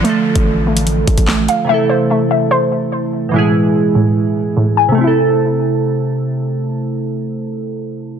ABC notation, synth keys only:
X:1
M:4/4
L:1/8
Q:1/4=146
K:Am
V:1 name="Synth keys"
[D,F,A,FA]8 | [C,E,A,EA]8 | [B,,E,^G,E^G]8 | [C,A,EA]8- |
[C,A,EA]8 |]